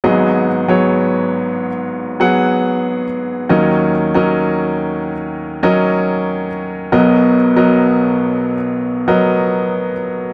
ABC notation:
X:1
M:4/4
L:1/16
Q:1/4=70
K:G#m
V:1 name="Grand piano"
[F,B,Gd]2 z [F,B,Gc]4- [F,B,Gc] z2 [F,B,Gf]4 z2 | [F,CAd]2 z [F,CAd]4- [F,CAd] z2 [F,CAd]4 z2 | [F,B,Ad]2 z [F,B,Ad]4- [F,B,Ad] z2 [F,B,Ad]4 z2 |]
V:2 name="Grand piano" clef=bass
[G,,,G,,]16 | [D,,D,]16 | [B,,,B,,]16 |]